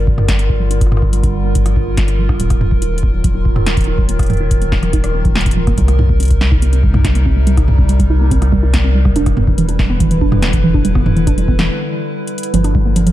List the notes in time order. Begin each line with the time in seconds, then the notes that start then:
Already playing: G1 D3 G3 F4 A#4
0.07 F3, kick
0.18 D4, cross-stick, mid tom
0.28 G3, kick, snare, closed hi-hat
0.39 A#3, closed hi-hat
0.50 D4, kick
0.60 F3
0.71 D4, closed hi-hat
0.81 kick, cross-stick, closed hi-hat
0.87 cross-stick
0.92 A#3, cross-stick, mid tom
0.97 cross-stick
1.02 D4, kick
1.13 F3, closed hi-hat
1.23 D4, kick, closed hi-hat
1.34 G3
1.45 A#3
1.55 D4, kick, closed hi-hat
1.66 F3, cross-stick, closed hi-hat
1.76 D4, kick
1.87 G3
1.97 A#3, kick, snare, closed hi-hat
2.08 D4, closed hi-hat
2.18 F3
2.29 D4, kick, cross-stick
2.40 D#1 D#3 F#3, closed hi-hat
2.50 A#3, kick, cross-stick, closed hi-hat
2.61 D#4, mid tom
2.71 F3, kick
2.82 D#4, closed hi-hat
2.93 F#3
2.98 closed hi-hat
3.03 A#3, kick
3.14 D#4
3.24 F3, kick, closed hi-hat
3.35 D#4
3.45 F#3, kick
3.56 A#3, cross-stick, mid tom
3.66 D#4, snare, closed hi-hat
3.77 F3, kick, closed hi-hat
3.81 closed hi-hat
3.84 D#4, closed hi-hat
3.98 F#3, kick
4.09 A#3, closed hi-hat
4.19 D#4, kick, cross-stick, closed hi-hat
4.23 closed hi-hat
4.26 F3, closed hi-hat
4.30 closed hi-hat, mid tom
4.33 closed hi-hat
4.37 D#4, closed hi-hat
4.51 F#3, kick, closed hi-hat
4.62 A#3, closed hi-hat
4.72 D#4, kick, snare
4.83 F3, cross-stick, closed hi-hat
4.93 D#4, kick, closed hi-hat
5.04 F#3, cross-stick, closed hi-hat
5.15 A#3
5.25 F3, kick, closed hi-hat
5.35 A#3, snare, closed hi-hat
5.41 closed hi-hat
5.46 D#4, kick, closed hi-hat
5.51 closed hi-hat
5.57 F3
5.67 A#3, kick, cross-stick, closed hi-hat
5.78 C2 C3 G3 D#4, kick, closed hi-hat
5.88 G3, cross-stick, closed hi-hat
5.99 D#4, mid tom
6.09 A#3, kick
6.20 C4, closed hi-hat
6.23 closed hi-hat
6.25 closed hi-hat
6.28 kick, closed hi-hat
6.31 G3, closed hi-hat
6.41 G3, snare
6.52 D#4, kick
6.62 A#3, closed hi-hat
6.73 C4, closed hi-hat
6.83 G3, kick
6.94 G3, cross-stick, mid tom
7.05 D#4, kick, snare, closed hi-hat
7.15 A#3, closed hi-hat
7.26 C4, kick
7.36 G3
7.47 G3, closed hi-hat
7.57 D#4, kick, cross-stick, closed hi-hat
7.68 A#3, mid tom
7.79 C4, kick
7.89 G3, closed hi-hat
8.00 G3, kick, closed hi-hat
8.10 D#4
8.21 A#3
8.31 C4, kick, closed hi-hat
8.42 G3, cross-stick, closed hi-hat
8.52 G3, kick
8.63 D#4
8.74 A#3, kick, snare, closed hi-hat
8.84 C4
8.95 G3
9.05 G3, kick, cross-stick
9.16 E1 D3 D4 E4 B4, closed hi-hat
9.26 G3, kick, cross-stick, closed hi-hat
9.37 B3, mid tom
9.47 E3, kick
9.58 E3, closed hi-hat
9.69 D4, closed hi-hat
9.79 G3, kick, snare
9.90 B3
10.00 E3, kick, closed hi-hat
10.11 E3, closed hi-hat
10.21 D4, kick
10.32 G3, cross-stick, mid tom
10.42 B3, snare, closed hi-hat
10.53 E3, kick, closed hi-hat
10.64 E3
10.74 D4, kick
10.85 G3, closed hi-hat
10.95 B3, kick, cross-stick
11.06 E3, mid tom
11.16 E3, closed hi-hat
11.27 D4, kick, closed hi-hat
11.38 G3, closed hi-hat
11.48 B3, kick
11.59 E3, cross-stick, snare, closed hi-hat
12.27 closed hi-hat
12.38 closed hi-hat
12.43 closed hi-hat
12.54 G1 D3 F3 G3 F4 A#4, closed hi-hat
12.64 D4, cross-stick, closed hi-hat
12.75 G3, kick
12.86 A#3
12.96 F3, closed hi-hat
13.07 F3, closed hi-hat